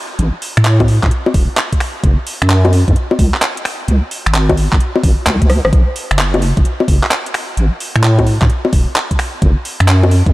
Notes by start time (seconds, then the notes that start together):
0.19 A1, closed hi-hat
0.42 open hi-hat
0.57 A2, finger snap, closed hi-hat
0.65 clap, closed hi-hat
0.80 kick, closed hi-hat, high bongo
0.88 open hi-hat
1.03 A2, kick, clap, closed hi-hat
1.11 closed hi-hat
1.26 high bongo
1.34 E1, kick, open hi-hat
1.57 clap, closed hi-hat
1.73 kick, closed hi-hat
1.80 finger snap, open hi-hat
2.04 F#1, kick, closed hi-hat
2.27 open hi-hat
2.42 F#2, finger snap, closed hi-hat
2.50 clap, closed hi-hat
2.65 closed hi-hat, high bongo
2.73 open hi-hat
2.88 F#2, kick, closed hi-hat
2.96 closed hi-hat
3.11 high bongo
3.19 C#2, kick, open hi-hat
3.34 clap
3.42 clap, closed hi-hat
3.57 closed hi-hat
3.65 finger snap, open hi-hat
3.88 C#2, closed hi-hat
4.11 open hi-hat
4.26 G#1, finger snap, closed hi-hat
4.34 clap, closed hi-hat
4.49 kick, closed hi-hat, high bongo
4.57 open hi-hat
4.72 G#1, kick, clap, closed hi-hat
4.80 closed hi-hat
4.96 high bongo
5.04 G#1, kick, open hi-hat
5.27 C#2, clap, closed hi-hat
5.42 C#2, kick, closed hi-hat
5.50 cross-stick, open hi-hat
5.65 G#1, cross-stick
5.73 B1, kick, closed hi-hat
5.96 open hi-hat
6.11 F#1, finger snap, closed hi-hat
6.19 clap, closed hi-hat
6.34 closed hi-hat, high bongo
6.42 open hi-hat
6.57 F#1, kick, closed hi-hat
6.65 closed hi-hat
6.80 high bongo
6.88 F#1, kick, open hi-hat
7.03 clap
7.11 clap, closed hi-hat
7.26 closed hi-hat
7.34 finger snap, open hi-hat
7.57 A1, closed hi-hat
7.80 open hi-hat
7.96 A2, finger snap, closed hi-hat
8.03 clap, closed hi-hat
8.19 kick, closed hi-hat, high bongo
8.27 open hi-hat
8.42 A2, kick, clap, closed hi-hat
8.50 closed hi-hat
8.65 high bongo
8.73 E1, kick, open hi-hat
8.96 clap, closed hi-hat
9.11 kick, closed hi-hat
9.19 finger snap, open hi-hat
9.42 F#1, kick, closed hi-hat
9.65 open hi-hat
9.80 F#2, finger snap, closed hi-hat
9.88 clap, closed hi-hat
10.03 closed hi-hat, high bongo
10.11 open hi-hat
10.26 F#2, kick, closed hi-hat